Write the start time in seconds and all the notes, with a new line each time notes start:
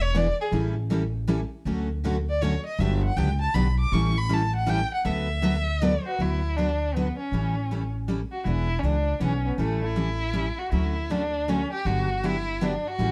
Already playing: E1
0.02 C#5
0.14 E3 B3 D4 G#4 B4 D5
0.41 G#4
0.52 A1 E3 G3 C#4 E4 A4
0.90 E3 G3 C#4 E4 A4
1.28 E3 G3 C#4 E4 A4
1.65 D2 D3 F#3 A3 C#4 F#4 A4
2.05 D3 F#3 A3 C#4 F#4 A4
2.29 D5
2.42 D3 F#3 A3 C#4 F#4 A4 C#5
2.66 D#5
2.79 G1 D3 F#3 B3 D4 G4 E5
3.04 F#5
3.16 C#2 D3 F#3 B3 D4 G4 G5
3.41 A5
3.54 B1 D3 F#3 B3 D4 G4 B5
3.80 D6
3.92 A1 E3 G3 C#4 E4 A4 C#6
4.18 B5
4.29 E3 G3 C#4 E4 A4
4.33 A5
4.56 F#5
4.66 E3 G3 C#4 E4 A4 G5
4.94 F#5
5.05 D2 D3 F#3 B3 F#4 A4 B4 E5
5.42 D3 F#3 B3 F#4 A4 B4
5.82 D3 F#3 B3 F#4 A4 B4
6.06 F#4
6.19 D2 D3 F#3 B3 E4 F#4 B4
6.57 D3 F#3 B3 D4 F#4 B4
6.94 D3 F#3 B3 F#4 B4
7.18 C#4
7.31 A1 E3 G3 C#4 E4 A4
7.71 E3 G3 C#4 E4 A4
8.08 E3 G3 C#4 E4 A4
8.32 F#4
8.45 E1 E3 B3 D4 E4 G#4
8.79 C#2 C#4
8.83 E3 B3 D4 G#4
9.19 B1 E3 B3 C#4 D4 G#4
9.46 B3
9.58 A1 E3 G3 A3 C#4 E4 A4
9.83 E4
9.96 E3 G3 C#4 E4 A4
10.33 E3 G3 C#4 E4 A4
10.58 F#4
10.71 D2 D3 F#3 A3 C#4 E4 F#4 A4
11.10 D3 F#3 A3 C#4 D4 F#4 A4
11.48 D3 F#3 A3 C#4 F#4 A4
11.72 G4
11.85 G1 D3 F#3 B3 D4 F#4 G4
12.23 D3 F#3 B3 D4 E4 G4
12.61 D3 F#3 B3 D4 G4
12.87 F#4
12.99 A1 E3 G3 C#4 E4 A4